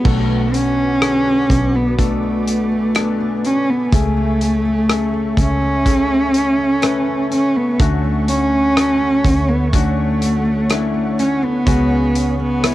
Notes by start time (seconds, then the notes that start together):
0.04 B1 B2 D3 A3 B3 F#4 A4 B4 F#5 D6, kick, crash
0.29 A3
0.54 C#4 F#4, closed hi-hat
0.78 A3
1.01 D3 B3 G#4, cross-stick, closed hi-hat
1.26 A3
1.50 B1, kick, closed hi-hat
1.74 A3 B3
1.98 B2 A3 B3 D4 F#4 A4 G#5, kick, closed hi-hat
2.23 A3
2.47 F#4, closed hi-hat
2.72 A3
2.95 B3 D4 A4, cross-stick, closed hi-hat
3.20 A3
3.45 C#4 D4, closed hi-hat
3.69 A3 B3
3.92 C#2 C#3 A3 C#4 G#4 E5 C#6, kick, closed hi-hat
4.17 A3
4.41 G#4, closed hi-hat
4.65 A3
4.89 A3 C#4 G#4, cross-stick, closed hi-hat
5.13 A3
5.37 C#2 C#4, kick, closed hi-hat
5.62 A3
5.85 C#3 A3 C#4 G#4 G#5, kick, closed hi-hat
6.10 A3
6.34 G#4, closed hi-hat
6.58 A3
6.82 A3 C#4 B4, cross-stick, closed hi-hat
7.06 A3
7.31 C#4, closed hi-hat
7.55 A3 B3
7.79 D2 D3 A3 C#4 F#4 C#5 F#5, kick, closed hi-hat
8.04 A3
8.28 C#4 F#4, closed hi-hat
8.52 A3
8.76 C#4 F#4 A4, cross-stick, closed hi-hat
9.00 A3
9.24 D2 C#4, kick, closed hi-hat
9.48 A3 B3
9.73 D3 A3 C#4 D4 F#4, kick, closed hi-hat
9.97 A3
10.21 F#4, closed hi-hat
10.45 A3
10.69 C#4 D4 E4, cross-stick, closed hi-hat
10.94 A3
11.18 C#4, closed hi-hat
11.42 A3 B3
11.66 C#2 C#3 G#3 C#4 F#4 G#4 C#5, kick, closed hi-hat
11.91 C#4
12.15 G#4, closed hi-hat
12.40 B3 C#4
12.63 G#3 C#4 E4 F#4, cross-stick, closed hi-hat